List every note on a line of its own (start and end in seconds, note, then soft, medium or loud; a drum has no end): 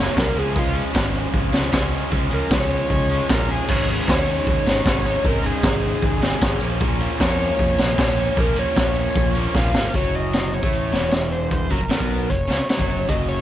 0.00 0.16 F#2 medium
0.00 0.14 C#3 loud
0.00 0.15 F#3 medium
0.00 0.16 A#3 medium
0.00 0.18 C#4 medium
0.00 0.15 C#5 loud
0.15 0.32 C2 loud
0.15 0.34 C#3 medium
0.15 0.35 F#3 medium
0.15 0.35 A#3 medium
0.15 0.34 C#4 medium
0.15 kick loud
0.15 snare loud
0.19 0.37 A#4 medium
0.35 0.81 C#2 loud
0.35 0.53 C#3 medium
0.35 0.54 F3 medium
0.35 0.55 G#3 medium
0.35 0.56 C#4 loud
0.35 0.56 G#4 medium
0.35 open hi-hat medium
0.53 0.92 C#3 loud
0.53 0.75 F3 loud
0.53 0.74 G#3 loud
0.53 0.73 C#4 loud
0.53 kick loud
0.59 0.76 F4 loud
0.73 0.93 F3 medium
0.73 0.94 G#3 medium
0.73 0.94 C#4 medium
0.73 open hi-hat medium
0.93 1.25 G#1 loud
0.93 1.70 C#3 loud
0.93 1.53 F3 medium
0.93 1.52 G#3 loud
0.93 1.52 C#4 loud
0.93 kick loud
0.93 snare loud
1.15 open hi-hat medium
1.34 1.49 G#1 loud
1.34 kick loud
1.52 1.68 C#2 medium
1.52 1.71 F3 medium
1.52 1.73 G#3 medium
1.52 1.73 C#4 medium
1.52 snare medium
1.52 open hi-hat medium
1.72 2.03 C#2 medium
1.72 2.09 C#3 medium
1.72 1.92 F3 medium
1.72 1.91 G#3 medium
1.72 1.90 C#4 medium
1.72 kick loud
1.72 snare loud
1.90 2.10 F3 medium
1.90 2.12 G#3 medium
1.90 2.13 C#4 medium
1.90 open hi-hat medium
2.10 2.27 C#2 loud
2.10 2.49 C#3 medium
2.10 2.32 F3 medium
2.10 2.32 G#3 medium
2.10 2.30 C#4 loud
2.10 kick loud
2.30 2.39 C#2 medium
2.30 2.50 F3 medium
2.30 2.52 G#3 medium
2.30 2.52 C#4 medium
2.30 2.52 A#4 loud
2.30 open hi-hat medium
2.50 2.81 C#2 loud
2.50 3.28 C#3 medium
2.50 3.10 F3 loud
2.50 3.10 G#3 loud
2.50 3.09 C#4 loud
2.50 3.28 C#5 loud
2.50 kick loud
2.50 snare loud
2.70 open hi-hat medium
2.90 3.20 C#2 loud
2.90 kick loud
3.09 3.29 F3 medium
3.09 3.31 G#3 medium
3.09 3.31 C#4 medium
3.09 open hi-hat medium
3.29 3.59 A#1 loud
3.29 3.67 C#3 medium
3.29 3.50 F3 medium
3.29 3.50 G#3 loud
3.29 3.48 C#4 medium
3.29 3.49 A#4 medium
3.29 kick loud
3.29 snare loud
3.49 3.68 F3 medium
3.49 3.69 G#3 medium
3.49 3.70 C#4 medium
3.49 3.69 G#4 medium
3.49 open hi-hat medium
3.68 3.98 G#1 loud
3.68 4.07 G#2 medium
3.68 4.07 C#3 loud
3.68 3.91 G#3 loud
3.68 3.88 C#4 medium
3.68 3.90 C#4 medium
3.68 3.88 D#4 loud
3.68 kick loud
3.68 crash loud
3.88 4.09 G#3 medium
3.88 4.10 C#4 medium
3.88 4.10 D#4 medium
3.88 open hi-hat medium
4.08 4.38 D#2 loud
4.08 4.86 G#2 medium
4.08 4.85 C#3 loud
4.08 4.68 G#3 loud
4.08 4.67 C#4 loud
4.08 4.65 D#4 loud
4.08 4.84 C#5 loud
4.08 kick loud
4.08 snare loud
4.28 open hi-hat medium
4.47 4.62 D#2 medium
4.47 kick loud
4.66 4.81 G#1 medium
4.66 4.87 G#3 medium
4.66 4.88 C#4 medium
4.66 4.88 D#4 medium
4.66 snare medium
4.66 open hi-hat medium
4.85 5.15 G#1 medium
4.85 5.23 C#3 medium
4.85 5.07 G#3 medium
4.85 5.05 C#4 medium
4.85 5.03 D#4 loud
4.85 5.06 C#5 medium
4.85 kick loud
4.85 snare loud
5.04 5.24 G#3 medium
5.04 5.25 C#4 medium
5.04 5.24 D#4 medium
5.04 5.25 C#5 loud
5.04 open hi-hat medium
5.23 5.39 G#1 loud
5.23 5.61 G#2 medium
5.23 5.61 C#3 loud
5.23 5.45 G#3 medium
5.23 5.44 C#4 loud
5.23 5.42 D#4 medium
5.23 kick loud
5.27 5.45 A#4 loud
5.43 5.51 G#1 medium
5.43 5.63 G#3 medium
5.43 5.64 C#4 medium
5.43 5.64 D#4 medium
5.43 6.59 G#4 loud
5.43 open hi-hat medium
5.62 5.93 G#1 loud
5.62 6.41 G#2 medium
5.62 6.38 C#3 loud
5.62 6.23 G#3 loud
5.62 6.22 C#4 loud
5.62 6.20 D#4 loud
5.62 kick loud
5.62 snare loud
5.83 open hi-hat medium
6.02 6.33 G#1 loud
6.02 kick loud
6.21 6.40 G#3 medium
6.21 6.41 C#4 medium
6.21 6.41 D#4 medium
6.21 snare medium
6.21 open hi-hat medium
6.40 6.57 G#1 loud
6.40 6.59 C#3 medium
6.40 6.61 G#3 medium
6.40 6.59 C#4 medium
6.40 6.59 D#4 medium
6.40 kick loud
6.40 snare loud
6.59 7.06 A#1 medium
6.59 6.80 A#2 medium
6.59 6.81 F3 medium
6.59 6.82 A#3 medium
6.59 6.83 C#4 loud
6.59 open hi-hat medium
6.80 7.19 A#2 loud
6.80 7.02 F3 loud
6.80 7.01 A#3 loud
6.80 6.99 C#4 loud
6.80 kick loud
6.99 7.20 F3 medium
6.99 7.20 A#3 medium
6.99 7.21 C#4 medium
6.99 open hi-hat medium
7.19 7.50 F2 loud
7.19 7.95 A#2 medium
7.19 7.79 F3 loud
7.19 7.79 A#3 loud
7.19 7.77 C#4 loud
7.19 7.97 C#5 loud
7.19 kick loud
7.19 snare loud
7.40 open hi-hat medium
7.59 7.74 F2 loud
7.59 kick loud
7.77 7.94 A#1 medium
7.77 7.96 F3 medium
7.77 7.97 A#3 medium
7.77 7.98 C#4 medium
7.77 snare medium
7.77 open hi-hat medium
7.97 8.28 A#1 medium
7.97 8.35 A#2 medium
7.97 8.18 F3 medium
7.97 8.17 A#3 medium
7.97 8.16 C#4 medium
7.97 8.18 C#5 loud
7.97 kick loud
7.97 snare loud
8.16 8.36 F3 medium
8.16 8.37 A#3 medium
8.16 8.37 C#4 medium
8.16 8.37 C#5 medium
8.16 open hi-hat medium
8.36 8.52 A#1 loud
8.36 8.74 A#2 medium
8.36 8.58 F3 loud
8.36 8.56 A#3 loud
8.36 8.55 C#4 loud
8.36 8.58 A#4 medium
8.36 kick loud
8.56 8.64 A#1 medium
8.56 8.76 F3 medium
8.56 8.77 A#3 medium
8.56 8.77 C#4 medium
8.56 9.53 C#5 loud
8.56 open hi-hat medium
8.76 9.06 A#1 loud
8.76 9.53 A#2 loud
8.76 9.37 F3 loud
8.76 9.36 A#3 loud
8.76 9.34 C#4 loud
8.76 kick loud
8.76 snare loud
8.96 open hi-hat medium
9.16 9.46 A#1 loud
9.16 kick loud
9.35 9.54 F3 medium
9.35 9.55 A#3 medium
9.35 9.56 C#4 medium
9.35 open hi-hat medium
9.55 9.72 A#1 medium
9.55 9.93 A#2 medium
9.55 9.76 F3 medium
9.55 9.74 A#3 medium
9.55 9.73 C#4 medium
9.55 9.92 F5 medium
9.55 kick loud
9.55 snare medium
9.74 9.92 G#1 medium
9.74 9.94 F3 medium
9.74 9.93 A#3 medium
9.74 9.93 C#4 medium
9.74 snare loud
9.94 10.59 F#1 medium
9.94 10.62 F#2 medium
9.94 10.63 F#3 medium
9.94 10.16 C#5 medium
9.94 kick medium
9.94 closed hi-hat medium
10.14 10.53 D#5 medium
10.14 closed hi-hat medium
10.33 snare medium
10.33 closed hi-hat medium
10.53 11.28 C#5 medium
10.53 closed hi-hat medium
10.63 10.90 A1 medium
10.63 10.92 A2 medium
10.63 10.92 A3 medium
10.63 kick loud
10.72 closed hi-hat medium
10.92 11.67 E1 medium
10.92 11.70 E2 medium
10.92 11.70 E3 medium
10.92 snare medium
10.92 closed hi-hat soft
11.11 snare medium
11.11 closed hi-hat medium
11.31 11.50 C5 medium
11.31 closed hi-hat medium
11.51 11.72 C5 medium
11.51 kick medium
11.51 closed hi-hat medium
11.70 11.79 F#1 medium
11.70 11.79 F#2 medium
11.70 11.80 F#3 medium
11.70 11.89 A#4 medium
11.70 kick medium
11.70 closed hi-hat medium
11.80 11.89 F#1 medium
11.80 11.90 F#2 medium
11.89 11.99 A1 medium
11.89 11.99 A2 medium
11.89 12.00 A3 medium
11.89 12.31 A#4 medium
11.89 snare medium
11.89 closed hi-hat medium
11.99 12.28 B1 medium
11.99 12.29 B2 medium
11.99 12.29 B3 medium
11.99 kick medium
12.10 closed hi-hat medium
12.29 12.48 F#1 medium
12.29 12.45 F#2 medium
12.29 12.68 C#5 loud
12.29 kick medium
12.29 closed hi-hat medium
12.48 12.58 C#2 medium
12.48 12.58 C#3 medium
12.48 12.59 C#4 medium
12.48 snare medium
12.48 closed hi-hat medium
12.69 12.88 C#5 medium
12.69 snare loud
12.69 closed hi-hat medium
12.78 13.07 F#1 medium
12.78 13.07 F#2 medium
12.78 13.07 F#3 medium
12.78 kick medium
12.89 13.10 C#5 medium
12.89 closed hi-hat medium
13.08 13.41 F#1 medium
13.08 13.41 F#2 medium
13.08 13.41 F#3 medium
13.08 13.28 D#5 medium
13.08 kick medium
13.08 closed hi-hat medium
13.29 13.41 C#5 medium
13.29 closed hi-hat medium